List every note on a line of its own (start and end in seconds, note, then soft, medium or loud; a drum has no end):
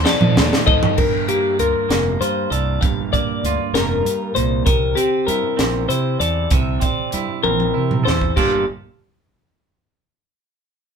0.04 0.35 F3 medium
0.04 0.35 C4 medium
0.04 0.36 D#4 loud
0.04 0.35 A4 loud
0.04 0.66 D5 medium
0.04 snare loud
0.21 0.38 F3 medium
0.21 mid tom medium
0.36 0.49 D#2 loud
0.36 0.66 F3 medium
0.36 0.66 C4 medium
0.36 0.65 D#4 medium
0.36 0.65 A4 medium
0.36 snare loud
0.53 snare medium
0.66 0.80 D2 medium
0.66 0.98 F3 medium
0.66 0.98 C4 medium
0.66 0.97 D#4 medium
0.66 0.97 A4 medium
0.66 0.97 D#5 medium
0.66 kick loud
0.83 floor tom medium
0.98 1.23 G1 medium
0.98 2.80 G2 medium
0.98 1.28 A#4 medium
0.98 kick loud
0.98 crash medium
1.29 1.89 A#3 medium
1.29 1.59 G4 medium
1.29 closed hi-hat medium
1.59 1.72 D2 medium
1.59 2.20 F4 soft
1.59 2.21 A#4 medium
1.59 closed hi-hat medium
1.89 2.15 F1 medium
1.89 3.13 A#3 medium
1.89 snare loud
1.89 closed hi-hat medium
2.20 2.46 G2 medium
2.20 2.78 F4 medium
2.20 2.50 C5 medium
2.20 closed hi-hat medium
2.50 2.77 C2 medium
2.50 2.84 A4 medium
2.50 2.81 D5 medium
2.50 closed hi-hat soft
2.81 3.08 G1 loud
2.81 3.74 G2 medium
2.81 3.12 F5 medium
2.81 kick loud
2.81 closed hi-hat medium
3.13 4.69 A#3 medium
3.13 3.74 D5 medium
3.13 kick medium
3.13 closed hi-hat soft
3.43 3.56 D2 medium
3.43 4.64 F4 medium
3.43 closed hi-hat medium
3.73 3.99 F1 medium
3.73 4.06 G2 medium
3.73 4.34 A#4 medium
3.73 snare loud
3.73 closed hi-hat medium
4.05 4.31 G2 medium
4.05 closed hi-hat medium
4.35 4.62 C2 medium
4.35 4.66 A#2 medium
4.35 4.65 C5 medium
4.35 closed hi-hat medium
4.66 4.92 C2 medium
4.66 6.50 C3 medium
4.66 4.97 A#4 medium
4.66 kick loud
4.66 closed hi-hat medium
4.95 5.57 C4 medium
4.95 5.27 G4 medium
4.95 closed hi-hat medium
5.27 5.41 G2 medium
5.27 5.87 E4 soft
5.27 5.88 A#4 medium
5.27 closed hi-hat medium
5.57 5.85 A#1 medium
5.57 6.47 C4 medium
5.57 snare loud
5.57 closed hi-hat medium
5.89 6.15 C3 medium
5.89 6.47 E4 medium
5.89 6.20 C5 medium
5.89 closed hi-hat medium
6.20 6.46 E2 medium
6.20 8.03 A4 medium
6.20 6.51 D5 medium
6.20 closed hi-hat soft
6.51 6.77 C2 loud
6.51 8.36 C3 medium
6.51 6.82 E5 medium
6.51 kick loud
6.51 closed hi-hat medium
6.80 7.43 C4 medium
6.80 7.43 D5 medium
6.80 kick medium
6.80 closed hi-hat medium
7.12 7.26 G2 medium
7.12 7.73 E4 soft
7.12 closed hi-hat medium
7.43 7.70 A#1 medium
7.43 8.33 C4 medium
7.43 8.05 A#4 medium
7.43 high tom soft
7.60 high tom soft
7.74 8.01 C3 medium
7.74 8.32 E4 soft
7.91 mid tom medium
8.04 8.32 E2 medium
8.04 8.32 A4 medium
8.04 8.36 C5 medium
8.04 snare medium
8.21 kick medium
8.36 8.65 G1 medium
8.36 8.64 G2 medium
8.36 8.64 A#3 soft
8.36 8.65 F4 medium
8.36 8.65 G4 medium
8.36 8.65 A4 soft
8.36 8.65 D5 soft
8.36 kick medium
8.36 crash medium